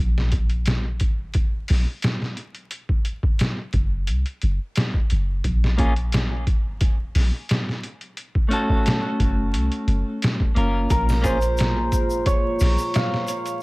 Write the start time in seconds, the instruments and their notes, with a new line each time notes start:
0.00 808-style bass A#1
0.18 snare
0.32 kick, closed hi-hat
0.50 closed hi-hat
0.66 snare, closed hi-hat
1.00 808-style bass G#1, kick, closed hi-hat
1.34 kick, closed hi-hat
1.68 808-style bass A#1, snare, open hi-hat
2.02 snare, closed hi-hat
2.22 snare
2.37 closed hi-hat
2.55 closed hi-hat
2.71 closed hi-hat
2.89 kick
3.05 closed hi-hat
3.23 kick
3.39 snare, closed hi-hat
3.73 808-style bass F#1, kick, closed hi-hat
4.07 808-style bass C2, closed hi-hat
4.26 closed hi-hat
4.42 808-style bass F#1, closed hi-hat
4.76 snare, closed hi-hat
4.94 kick
5.10 808-style bass F#1, closed hi-hat
5.44 808-style bass A#1, kick, closed hi-hat
5.64 snare
5.78 clean electric guitar A#3 C#4 F4 G#4, kick, closed hi-hat
5.96 closed hi-hat
6.12 snare, closed hi-hat
6.47 808-style bass G#1, kick, closed hi-hat
6.81 kick, closed hi-hat
7.15 808-style bass A#1, snare, open hi-hat
7.49 snare, closed hi-hat
7.69 snare
7.83 closed hi-hat
8.01 closed hi-hat
8.17 closed hi-hat
8.35 kick
8.49 clean electric guitar A3 C#4 F#4, closed hi-hat
8.53 clean electric guitar A4
8.69 kick
8.86 snare, closed hi-hat
9.20 808-style bass F#1, kick, closed hi-hat
9.54 808-style bass C2, closed hi-hat
9.72 closed hi-hat
9.87 808-style bass F#1, closed hi-hat
10.22 snare, closed hi-hat
10.40 kick
10.55 808-style bass F#1, clean electric guitar A#3 C#4 F4 A#4, closed hi-hat
10.90 808-style bass A#1, analog synth pad A#3 F4 G#4, santur A#4, kick, closed hi-hat, shaker
11.09 snare, triangle
11.22 clean electric guitar A#3 C#4 F4 G#4, santur C5, kick, closed hi-hat, shaker
11.42 closed hi-hat, shaker
11.57 snare, closed hi-hat, shaker
11.92 808-style bass G#1, kick, closed hi-hat, shaker
12.10 shaker
12.26 santur C#5, kick, closed hi-hat, shaker
12.60 808-style bass A#1, snare, open hi-hat, shaker
12.78 triangle, shaker
12.94 santur F5, snare, closed hi-hat, shaker
13.14 snare
13.28 closed hi-hat, shaker
13.46 closed hi-hat, shaker